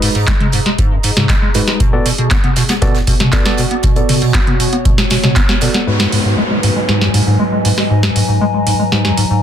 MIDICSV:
0, 0, Header, 1, 7, 480
1, 0, Start_track
1, 0, Key_signature, 5, "minor"
1, 0, Tempo, 508475
1, 1701, Time_signature, 4, 2, 24, 8
1, 8900, End_track
2, 0, Start_track
2, 0, Title_t, "Ambient pad"
2, 0, Program_c, 0, 92
2, 0, Note_on_c, 0, 68, 85
2, 0, Note_on_c, 0, 75, 69
2, 0, Note_on_c, 0, 82, 76
2, 1700, Note_off_c, 0, 75, 0
2, 1700, Note_on_c, 0, 59, 71
2, 1701, Note_off_c, 0, 82, 0
2, 2407, Note_on_c, 0, 66, 73
2, 2791, Note_off_c, 0, 68, 0
2, 3429, Note_on_c, 0, 73, 75
2, 5542, Note_on_c, 0, 80, 78
2, 6066, Note_on_c, 0, 75, 76
2, 6575, Note_off_c, 0, 73, 0
2, 6696, Note_off_c, 0, 66, 0
2, 7057, Note_off_c, 0, 59, 0
2, 7216, Note_on_c, 0, 82, 74
2, 8900, Note_off_c, 0, 75, 0
2, 8900, Note_off_c, 0, 80, 0
2, 8900, Note_off_c, 0, 82, 0
2, 8900, End_track
3, 0, Start_track
3, 0, Title_t, "Tine electric piano"
3, 0, Program_c, 1, 4
3, 0, Note_on_c, 1, 56, 78
3, 0, Note_on_c, 1, 63, 68
3, 0, Note_on_c, 1, 66, 68
3, 0, Note_on_c, 1, 71, 84
3, 129, Note_off_c, 1, 56, 0
3, 129, Note_off_c, 1, 63, 0
3, 129, Note_off_c, 1, 66, 0
3, 129, Note_off_c, 1, 71, 0
3, 1462, Note_on_c, 1, 56, 77
3, 1462, Note_on_c, 1, 63, 72
3, 1462, Note_on_c, 1, 66, 69
3, 1462, Note_on_c, 1, 71, 87
3, 1687, Note_off_c, 1, 56, 0
3, 1687, Note_off_c, 1, 63, 0
3, 1687, Note_off_c, 1, 66, 0
3, 1687, Note_off_c, 1, 71, 0
3, 1822, Note_on_c, 1, 59, 97
3, 1822, Note_on_c, 1, 66, 88
3, 1822, Note_on_c, 1, 69, 88
3, 1823, Note_on_c, 1, 74, 107
3, 1964, Note_off_c, 1, 59, 0
3, 1964, Note_off_c, 1, 66, 0
3, 1964, Note_off_c, 1, 69, 0
3, 1964, Note_off_c, 1, 74, 0
3, 2662, Note_on_c, 1, 59, 103
3, 2662, Note_on_c, 1, 66, 93
3, 2662, Note_on_c, 1, 69, 89
3, 2662, Note_on_c, 1, 74, 110
3, 2804, Note_off_c, 1, 59, 0
3, 2804, Note_off_c, 1, 66, 0
3, 2804, Note_off_c, 1, 69, 0
3, 2804, Note_off_c, 1, 74, 0
3, 3141, Note_on_c, 1, 66, 80
3, 3141, Note_on_c, 1, 69, 78
3, 3142, Note_on_c, 1, 59, 88
3, 3142, Note_on_c, 1, 74, 95
3, 3243, Note_off_c, 1, 66, 0
3, 3243, Note_off_c, 1, 69, 0
3, 3243, Note_off_c, 1, 74, 0
3, 3244, Note_off_c, 1, 59, 0
3, 3262, Note_on_c, 1, 59, 91
3, 3262, Note_on_c, 1, 66, 86
3, 3262, Note_on_c, 1, 69, 87
3, 3262, Note_on_c, 1, 74, 106
3, 3404, Note_off_c, 1, 59, 0
3, 3404, Note_off_c, 1, 66, 0
3, 3404, Note_off_c, 1, 69, 0
3, 3404, Note_off_c, 1, 74, 0
3, 3742, Note_on_c, 1, 59, 77
3, 3742, Note_on_c, 1, 66, 69
3, 3742, Note_on_c, 1, 69, 73
3, 3742, Note_on_c, 1, 74, 85
3, 3969, Note_off_c, 1, 59, 0
3, 3969, Note_off_c, 1, 66, 0
3, 3969, Note_off_c, 1, 69, 0
3, 3969, Note_off_c, 1, 74, 0
3, 5302, Note_on_c, 1, 59, 78
3, 5302, Note_on_c, 1, 66, 71
3, 5302, Note_on_c, 1, 69, 71
3, 5303, Note_on_c, 1, 74, 85
3, 5527, Note_off_c, 1, 59, 0
3, 5527, Note_off_c, 1, 66, 0
3, 5527, Note_off_c, 1, 69, 0
3, 5527, Note_off_c, 1, 74, 0
3, 5542, Note_on_c, 1, 63, 67
3, 5542, Note_on_c, 1, 71, 80
3, 5543, Note_on_c, 1, 56, 73
3, 5543, Note_on_c, 1, 66, 68
3, 8900, Note_off_c, 1, 56, 0
3, 8900, Note_off_c, 1, 63, 0
3, 8900, Note_off_c, 1, 66, 0
3, 8900, Note_off_c, 1, 71, 0
3, 8900, End_track
4, 0, Start_track
4, 0, Title_t, "Ambient pad"
4, 0, Program_c, 2, 92
4, 5542, Note_on_c, 2, 44, 78
4, 5542, Note_on_c, 2, 71, 86
4, 5543, Note_on_c, 2, 54, 70
4, 8900, Note_off_c, 2, 44, 0
4, 8900, Note_off_c, 2, 54, 0
4, 8900, Note_off_c, 2, 71, 0
4, 8900, End_track
5, 0, Start_track
5, 0, Title_t, "Acid bass"
5, 0, Program_c, 3, 38
5, 22, Note_on_c, 3, 44, 76
5, 88, Note_off_c, 3, 44, 0
5, 142, Note_on_c, 3, 44, 77
5, 240, Note_off_c, 3, 44, 0
5, 262, Note_on_c, 3, 56, 98
5, 301, Note_off_c, 3, 56, 0
5, 381, Note_on_c, 3, 56, 76
5, 447, Note_off_c, 3, 56, 0
5, 501, Note_on_c, 3, 44, 76
5, 567, Note_off_c, 3, 44, 0
5, 622, Note_on_c, 3, 56, 81
5, 661, Note_off_c, 3, 56, 0
5, 742, Note_on_c, 3, 44, 84
5, 862, Note_on_c, 3, 42, 74
5, 876, Note_off_c, 3, 44, 0
5, 928, Note_off_c, 3, 42, 0
5, 981, Note_on_c, 3, 44, 76
5, 1047, Note_off_c, 3, 44, 0
5, 1101, Note_on_c, 3, 44, 77
5, 1200, Note_off_c, 3, 44, 0
5, 1220, Note_on_c, 3, 56, 102
5, 1261, Note_off_c, 3, 56, 0
5, 1341, Note_on_c, 3, 56, 80
5, 1407, Note_off_c, 3, 56, 0
5, 1461, Note_on_c, 3, 44, 78
5, 1527, Note_off_c, 3, 44, 0
5, 1581, Note_on_c, 3, 56, 77
5, 1621, Note_off_c, 3, 56, 0
5, 1701, Note_on_c, 3, 47, 81
5, 1821, Note_on_c, 3, 45, 76
5, 1835, Note_off_c, 3, 47, 0
5, 1887, Note_off_c, 3, 45, 0
5, 1941, Note_on_c, 3, 47, 76
5, 2007, Note_off_c, 3, 47, 0
5, 2061, Note_on_c, 3, 47, 74
5, 2160, Note_off_c, 3, 47, 0
5, 2181, Note_on_c, 3, 59, 98
5, 2221, Note_off_c, 3, 59, 0
5, 2301, Note_on_c, 3, 59, 73
5, 2367, Note_off_c, 3, 59, 0
5, 2421, Note_on_c, 3, 47, 75
5, 2487, Note_off_c, 3, 47, 0
5, 2542, Note_on_c, 3, 59, 79
5, 2581, Note_off_c, 3, 59, 0
5, 2661, Note_on_c, 3, 47, 84
5, 2782, Note_on_c, 3, 45, 77
5, 2796, Note_off_c, 3, 47, 0
5, 2847, Note_off_c, 3, 45, 0
5, 2901, Note_on_c, 3, 47, 76
5, 2967, Note_off_c, 3, 47, 0
5, 3022, Note_on_c, 3, 47, 78
5, 3120, Note_off_c, 3, 47, 0
5, 3142, Note_on_c, 3, 59, 101
5, 3181, Note_off_c, 3, 59, 0
5, 3262, Note_on_c, 3, 59, 80
5, 3328, Note_off_c, 3, 59, 0
5, 3382, Note_on_c, 3, 47, 74
5, 3447, Note_off_c, 3, 47, 0
5, 3503, Note_on_c, 3, 59, 78
5, 3542, Note_off_c, 3, 59, 0
5, 3622, Note_on_c, 3, 47, 80
5, 3742, Note_on_c, 3, 45, 76
5, 3756, Note_off_c, 3, 47, 0
5, 3808, Note_off_c, 3, 45, 0
5, 3862, Note_on_c, 3, 47, 78
5, 3928, Note_off_c, 3, 47, 0
5, 3981, Note_on_c, 3, 47, 79
5, 4080, Note_off_c, 3, 47, 0
5, 4101, Note_on_c, 3, 59, 97
5, 4141, Note_off_c, 3, 59, 0
5, 4222, Note_on_c, 3, 59, 76
5, 4288, Note_off_c, 3, 59, 0
5, 4342, Note_on_c, 3, 47, 78
5, 4408, Note_off_c, 3, 47, 0
5, 4462, Note_on_c, 3, 59, 80
5, 4501, Note_off_c, 3, 59, 0
5, 4581, Note_on_c, 3, 47, 84
5, 4702, Note_on_c, 3, 45, 79
5, 4716, Note_off_c, 3, 47, 0
5, 4767, Note_off_c, 3, 45, 0
5, 4821, Note_on_c, 3, 47, 77
5, 4887, Note_off_c, 3, 47, 0
5, 4942, Note_on_c, 3, 47, 75
5, 5040, Note_off_c, 3, 47, 0
5, 5061, Note_on_c, 3, 59, 102
5, 5101, Note_off_c, 3, 59, 0
5, 5181, Note_on_c, 3, 59, 81
5, 5247, Note_off_c, 3, 59, 0
5, 5301, Note_on_c, 3, 47, 77
5, 5367, Note_off_c, 3, 47, 0
5, 5421, Note_on_c, 3, 59, 77
5, 5461, Note_off_c, 3, 59, 0
5, 5541, Note_on_c, 3, 44, 78
5, 5661, Note_on_c, 3, 42, 74
5, 5675, Note_off_c, 3, 44, 0
5, 5727, Note_off_c, 3, 42, 0
5, 5781, Note_on_c, 3, 44, 71
5, 5847, Note_off_c, 3, 44, 0
5, 5901, Note_on_c, 3, 44, 75
5, 6000, Note_off_c, 3, 44, 0
5, 6021, Note_on_c, 3, 56, 97
5, 6061, Note_off_c, 3, 56, 0
5, 6141, Note_on_c, 3, 56, 74
5, 6207, Note_off_c, 3, 56, 0
5, 6261, Note_on_c, 3, 44, 76
5, 6327, Note_off_c, 3, 44, 0
5, 6381, Note_on_c, 3, 56, 78
5, 6421, Note_off_c, 3, 56, 0
5, 6501, Note_on_c, 3, 44, 82
5, 6621, Note_on_c, 3, 42, 75
5, 6636, Note_off_c, 3, 44, 0
5, 6687, Note_off_c, 3, 42, 0
5, 6741, Note_on_c, 3, 44, 73
5, 6807, Note_off_c, 3, 44, 0
5, 6861, Note_on_c, 3, 44, 75
5, 6960, Note_off_c, 3, 44, 0
5, 6981, Note_on_c, 3, 56, 99
5, 7021, Note_off_c, 3, 56, 0
5, 7101, Note_on_c, 3, 56, 79
5, 7167, Note_off_c, 3, 56, 0
5, 7221, Note_on_c, 3, 44, 73
5, 7287, Note_off_c, 3, 44, 0
5, 7341, Note_on_c, 3, 56, 74
5, 7381, Note_off_c, 3, 56, 0
5, 7461, Note_on_c, 3, 44, 80
5, 7581, Note_on_c, 3, 42, 73
5, 7595, Note_off_c, 3, 44, 0
5, 7647, Note_off_c, 3, 42, 0
5, 7701, Note_on_c, 3, 44, 73
5, 7767, Note_off_c, 3, 44, 0
5, 7821, Note_on_c, 3, 44, 75
5, 7920, Note_off_c, 3, 44, 0
5, 7941, Note_on_c, 3, 56, 97
5, 7981, Note_off_c, 3, 56, 0
5, 8061, Note_on_c, 3, 56, 75
5, 8127, Note_off_c, 3, 56, 0
5, 8181, Note_on_c, 3, 44, 75
5, 8247, Note_off_c, 3, 44, 0
5, 8301, Note_on_c, 3, 56, 75
5, 8341, Note_off_c, 3, 56, 0
5, 8422, Note_on_c, 3, 44, 84
5, 8542, Note_on_c, 3, 42, 75
5, 8556, Note_off_c, 3, 44, 0
5, 8607, Note_off_c, 3, 42, 0
5, 8662, Note_on_c, 3, 44, 75
5, 8728, Note_off_c, 3, 44, 0
5, 8782, Note_on_c, 3, 44, 76
5, 8881, Note_off_c, 3, 44, 0
5, 8900, End_track
6, 0, Start_track
6, 0, Title_t, "Downlifter"
6, 0, Program_c, 4, 103
6, 5542, Note_on_c, 4, 60, 68
6, 8900, Note_off_c, 4, 60, 0
6, 8900, End_track
7, 0, Start_track
7, 0, Title_t, "Drums"
7, 21, Note_on_c, 9, 46, 109
7, 116, Note_off_c, 9, 46, 0
7, 142, Note_on_c, 9, 42, 50
7, 236, Note_off_c, 9, 42, 0
7, 258, Note_on_c, 9, 39, 112
7, 261, Note_on_c, 9, 36, 119
7, 262, Note_on_c, 9, 42, 80
7, 263, Note_off_c, 9, 42, 0
7, 263, Note_on_c, 9, 42, 89
7, 266, Note_on_c, 9, 38, 106
7, 352, Note_off_c, 9, 39, 0
7, 356, Note_off_c, 9, 36, 0
7, 358, Note_off_c, 9, 42, 0
7, 361, Note_off_c, 9, 38, 0
7, 382, Note_on_c, 9, 42, 36
7, 382, Note_on_c, 9, 47, 85
7, 477, Note_off_c, 9, 42, 0
7, 477, Note_off_c, 9, 47, 0
7, 494, Note_on_c, 9, 42, 71
7, 502, Note_on_c, 9, 46, 91
7, 588, Note_off_c, 9, 42, 0
7, 597, Note_off_c, 9, 46, 0
7, 622, Note_on_c, 9, 38, 39
7, 622, Note_on_c, 9, 42, 52
7, 716, Note_off_c, 9, 38, 0
7, 716, Note_off_c, 9, 42, 0
7, 741, Note_on_c, 9, 36, 113
7, 741, Note_on_c, 9, 42, 76
7, 746, Note_off_c, 9, 42, 0
7, 746, Note_on_c, 9, 42, 81
7, 836, Note_off_c, 9, 36, 0
7, 840, Note_off_c, 9, 42, 0
7, 976, Note_on_c, 9, 42, 71
7, 981, Note_on_c, 9, 46, 99
7, 1070, Note_off_c, 9, 42, 0
7, 1076, Note_off_c, 9, 46, 0
7, 1102, Note_on_c, 9, 38, 64
7, 1102, Note_on_c, 9, 42, 54
7, 1102, Note_on_c, 9, 47, 95
7, 1196, Note_off_c, 9, 38, 0
7, 1196, Note_off_c, 9, 42, 0
7, 1196, Note_off_c, 9, 47, 0
7, 1217, Note_on_c, 9, 39, 115
7, 1221, Note_on_c, 9, 36, 117
7, 1222, Note_on_c, 9, 38, 114
7, 1222, Note_on_c, 9, 42, 78
7, 1223, Note_off_c, 9, 42, 0
7, 1223, Note_on_c, 9, 42, 92
7, 1312, Note_off_c, 9, 39, 0
7, 1316, Note_off_c, 9, 36, 0
7, 1316, Note_off_c, 9, 38, 0
7, 1317, Note_off_c, 9, 42, 0
7, 1457, Note_on_c, 9, 42, 77
7, 1461, Note_on_c, 9, 46, 89
7, 1462, Note_on_c, 9, 38, 49
7, 1551, Note_off_c, 9, 42, 0
7, 1556, Note_off_c, 9, 38, 0
7, 1556, Note_off_c, 9, 46, 0
7, 1582, Note_on_c, 9, 38, 62
7, 1582, Note_on_c, 9, 42, 54
7, 1676, Note_off_c, 9, 38, 0
7, 1676, Note_off_c, 9, 42, 0
7, 1700, Note_on_c, 9, 42, 93
7, 1701, Note_off_c, 9, 42, 0
7, 1701, Note_on_c, 9, 36, 113
7, 1701, Note_on_c, 9, 42, 82
7, 1796, Note_off_c, 9, 36, 0
7, 1796, Note_off_c, 9, 42, 0
7, 1942, Note_on_c, 9, 46, 104
7, 1946, Note_on_c, 9, 42, 70
7, 2036, Note_off_c, 9, 46, 0
7, 2041, Note_off_c, 9, 42, 0
7, 2061, Note_on_c, 9, 42, 53
7, 2156, Note_off_c, 9, 42, 0
7, 2177, Note_on_c, 9, 39, 118
7, 2178, Note_on_c, 9, 42, 81
7, 2179, Note_on_c, 9, 38, 105
7, 2181, Note_off_c, 9, 42, 0
7, 2181, Note_on_c, 9, 36, 118
7, 2181, Note_on_c, 9, 42, 82
7, 2271, Note_off_c, 9, 39, 0
7, 2273, Note_off_c, 9, 38, 0
7, 2276, Note_off_c, 9, 36, 0
7, 2276, Note_off_c, 9, 42, 0
7, 2301, Note_on_c, 9, 42, 38
7, 2301, Note_on_c, 9, 47, 83
7, 2396, Note_off_c, 9, 42, 0
7, 2396, Note_off_c, 9, 47, 0
7, 2417, Note_on_c, 9, 42, 79
7, 2421, Note_on_c, 9, 46, 88
7, 2422, Note_on_c, 9, 38, 111
7, 2511, Note_off_c, 9, 42, 0
7, 2516, Note_off_c, 9, 38, 0
7, 2516, Note_off_c, 9, 46, 0
7, 2537, Note_on_c, 9, 42, 76
7, 2541, Note_on_c, 9, 38, 105
7, 2542, Note_off_c, 9, 38, 0
7, 2542, Note_off_c, 9, 42, 0
7, 2542, Note_on_c, 9, 38, 39
7, 2542, Note_on_c, 9, 42, 55
7, 2636, Note_off_c, 9, 38, 0
7, 2636, Note_off_c, 9, 42, 0
7, 2658, Note_on_c, 9, 38, 101
7, 2661, Note_on_c, 9, 36, 113
7, 2661, Note_on_c, 9, 42, 88
7, 2662, Note_off_c, 9, 42, 0
7, 2662, Note_on_c, 9, 42, 78
7, 2753, Note_off_c, 9, 38, 0
7, 2756, Note_off_c, 9, 36, 0
7, 2756, Note_off_c, 9, 42, 0
7, 2781, Note_on_c, 9, 38, 112
7, 2782, Note_on_c, 9, 42, 72
7, 2875, Note_off_c, 9, 38, 0
7, 2876, Note_off_c, 9, 42, 0
7, 2899, Note_on_c, 9, 42, 70
7, 2901, Note_on_c, 9, 36, 57
7, 2901, Note_on_c, 9, 46, 99
7, 2994, Note_off_c, 9, 42, 0
7, 2996, Note_off_c, 9, 36, 0
7, 2996, Note_off_c, 9, 46, 0
7, 3022, Note_on_c, 9, 38, 66
7, 3022, Note_on_c, 9, 42, 55
7, 3022, Note_on_c, 9, 47, 91
7, 3116, Note_off_c, 9, 38, 0
7, 3116, Note_off_c, 9, 42, 0
7, 3116, Note_off_c, 9, 47, 0
7, 3135, Note_on_c, 9, 42, 84
7, 3137, Note_on_c, 9, 39, 121
7, 3141, Note_on_c, 9, 36, 115
7, 3142, Note_off_c, 9, 42, 0
7, 3142, Note_on_c, 9, 42, 84
7, 3147, Note_on_c, 9, 38, 116
7, 3232, Note_off_c, 9, 39, 0
7, 3236, Note_off_c, 9, 36, 0
7, 3236, Note_off_c, 9, 42, 0
7, 3242, Note_off_c, 9, 38, 0
7, 3262, Note_on_c, 9, 38, 89
7, 3356, Note_off_c, 9, 38, 0
7, 3375, Note_on_c, 9, 42, 72
7, 3382, Note_on_c, 9, 46, 88
7, 3469, Note_off_c, 9, 42, 0
7, 3476, Note_off_c, 9, 46, 0
7, 3501, Note_on_c, 9, 42, 53
7, 3596, Note_off_c, 9, 42, 0
7, 3615, Note_on_c, 9, 42, 79
7, 3621, Note_on_c, 9, 36, 114
7, 3622, Note_off_c, 9, 42, 0
7, 3622, Note_on_c, 9, 42, 86
7, 3716, Note_off_c, 9, 36, 0
7, 3716, Note_off_c, 9, 42, 0
7, 3737, Note_on_c, 9, 42, 43
7, 3742, Note_off_c, 9, 42, 0
7, 3742, Note_on_c, 9, 42, 39
7, 3836, Note_off_c, 9, 42, 0
7, 3862, Note_on_c, 9, 46, 109
7, 3862, Note_on_c, 9, 47, 85
7, 3865, Note_off_c, 9, 46, 0
7, 3865, Note_on_c, 9, 46, 77
7, 3956, Note_off_c, 9, 47, 0
7, 3960, Note_off_c, 9, 46, 0
7, 3982, Note_on_c, 9, 42, 55
7, 4076, Note_off_c, 9, 42, 0
7, 4098, Note_on_c, 9, 39, 121
7, 4098, Note_on_c, 9, 42, 89
7, 4101, Note_on_c, 9, 36, 116
7, 4102, Note_off_c, 9, 42, 0
7, 4102, Note_on_c, 9, 42, 83
7, 4106, Note_on_c, 9, 38, 121
7, 4192, Note_off_c, 9, 39, 0
7, 4196, Note_off_c, 9, 36, 0
7, 4196, Note_off_c, 9, 42, 0
7, 4200, Note_off_c, 9, 38, 0
7, 4222, Note_on_c, 9, 42, 39
7, 4222, Note_on_c, 9, 47, 81
7, 4316, Note_off_c, 9, 42, 0
7, 4316, Note_off_c, 9, 47, 0
7, 4341, Note_on_c, 9, 42, 86
7, 4342, Note_on_c, 9, 46, 92
7, 4435, Note_off_c, 9, 42, 0
7, 4436, Note_off_c, 9, 46, 0
7, 4462, Note_on_c, 9, 42, 56
7, 4556, Note_off_c, 9, 42, 0
7, 4581, Note_on_c, 9, 42, 62
7, 4582, Note_off_c, 9, 42, 0
7, 4582, Note_on_c, 9, 36, 115
7, 4582, Note_on_c, 9, 42, 82
7, 4676, Note_off_c, 9, 36, 0
7, 4676, Note_off_c, 9, 42, 0
7, 4702, Note_on_c, 9, 38, 86
7, 4796, Note_off_c, 9, 38, 0
7, 4817, Note_on_c, 9, 42, 76
7, 4822, Note_on_c, 9, 38, 84
7, 4822, Note_on_c, 9, 46, 100
7, 4911, Note_off_c, 9, 42, 0
7, 4916, Note_off_c, 9, 38, 0
7, 4916, Note_off_c, 9, 46, 0
7, 4942, Note_on_c, 9, 38, 66
7, 4942, Note_on_c, 9, 42, 58
7, 4942, Note_on_c, 9, 47, 90
7, 5037, Note_off_c, 9, 38, 0
7, 5037, Note_off_c, 9, 42, 0
7, 5037, Note_off_c, 9, 47, 0
7, 5056, Note_on_c, 9, 42, 79
7, 5058, Note_on_c, 9, 39, 122
7, 5059, Note_on_c, 9, 38, 123
7, 5062, Note_off_c, 9, 42, 0
7, 5062, Note_on_c, 9, 36, 120
7, 5062, Note_on_c, 9, 42, 84
7, 5152, Note_off_c, 9, 39, 0
7, 5153, Note_off_c, 9, 38, 0
7, 5156, Note_off_c, 9, 36, 0
7, 5156, Note_off_c, 9, 42, 0
7, 5182, Note_on_c, 9, 38, 86
7, 5277, Note_off_c, 9, 38, 0
7, 5296, Note_on_c, 9, 42, 76
7, 5302, Note_on_c, 9, 46, 92
7, 5304, Note_on_c, 9, 38, 48
7, 5391, Note_off_c, 9, 42, 0
7, 5396, Note_off_c, 9, 46, 0
7, 5398, Note_off_c, 9, 38, 0
7, 5422, Note_on_c, 9, 38, 65
7, 5422, Note_on_c, 9, 42, 56
7, 5517, Note_off_c, 9, 38, 0
7, 5517, Note_off_c, 9, 42, 0
7, 5662, Note_on_c, 9, 38, 81
7, 5756, Note_off_c, 9, 38, 0
7, 5781, Note_on_c, 9, 46, 103
7, 5876, Note_off_c, 9, 46, 0
7, 6262, Note_on_c, 9, 46, 89
7, 6356, Note_off_c, 9, 46, 0
7, 6501, Note_on_c, 9, 38, 56
7, 6596, Note_off_c, 9, 38, 0
7, 6622, Note_on_c, 9, 38, 58
7, 6716, Note_off_c, 9, 38, 0
7, 6741, Note_on_c, 9, 46, 99
7, 6836, Note_off_c, 9, 46, 0
7, 7221, Note_on_c, 9, 46, 91
7, 7316, Note_off_c, 9, 46, 0
7, 7342, Note_on_c, 9, 38, 60
7, 7436, Note_off_c, 9, 38, 0
7, 7582, Note_on_c, 9, 38, 75
7, 7676, Note_off_c, 9, 38, 0
7, 7701, Note_on_c, 9, 46, 112
7, 7795, Note_off_c, 9, 46, 0
7, 8181, Note_on_c, 9, 46, 90
7, 8275, Note_off_c, 9, 46, 0
7, 8421, Note_on_c, 9, 38, 56
7, 8516, Note_off_c, 9, 38, 0
7, 8541, Note_on_c, 9, 38, 56
7, 8635, Note_off_c, 9, 38, 0
7, 8661, Note_on_c, 9, 46, 101
7, 8755, Note_off_c, 9, 46, 0
7, 8900, End_track
0, 0, End_of_file